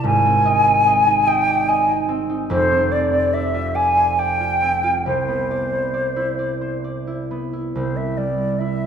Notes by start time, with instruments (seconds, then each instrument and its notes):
Already playing: harp C4 G4
0.04 harp G#1 G#2, flute G#5
0.26 harp C4
0.45 harp D#5
0.66 harp C4
0.86 harp D#5
1.07 harp D#4
1.27 harp D#5, flute G5
1.47 harp D5
1.68 harp D#5, flute G#5
1.88 harp D#4
2.09 harp C4
2.30 harp D#4
2.50 harp F1 F2, flute C5
2.71 harp C4
2.91 harp D5, flute D5
3.12 harp C4
3.33 harp D5, flute E5
3.54 harp F4
3.75 harp D5, flute G#5
3.97 harp C5
4.18 harp D5, flute G5
4.40 harp F4
4.62 harp C4
4.84 harp F4
5.06 harp C2, flute C5
5.28 harp B3
5.51 harp D5
5.73 harp B3
5.94 harp D5
6.16 harp E4
6.39 harp D5
6.61 harp C5
6.84 harp D5
7.07 harp E4
7.31 harp B3
7.53 harp E4
7.74 harp C2, flute C5
7.96 flute E5
8.17 harp G3, flute D5
8.59 harp E4, flute E5